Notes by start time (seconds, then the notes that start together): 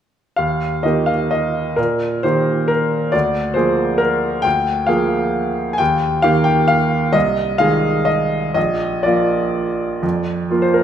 0.36 D#2 F5
0.83 D#3 A#3 G4 D#5
1.06 F5
1.31 D#5
1.76 A#2 A#4
2.23 D#3 A#3 G4 C5
2.68 A#4
3.12 D2 D5
3.54 F3 A#3 G#4 C5
3.98 A#4
4.42 D2 G5
4.87 F3 A#3 G#4 F5
5.73 G#5
5.78 D#2 G5
6.22 D#3 A#3 G4 F5
6.44 G5
6.68 F5
7.13 C2 D#5
7.58 D#3 G#3 G#4 F5
8.05 D#5
8.54 A#1 D#5
9.03 F3 A#3 F4 D5
10.03 F2
10.50 F3 A#3 F4
10.62 C5
10.74 A#4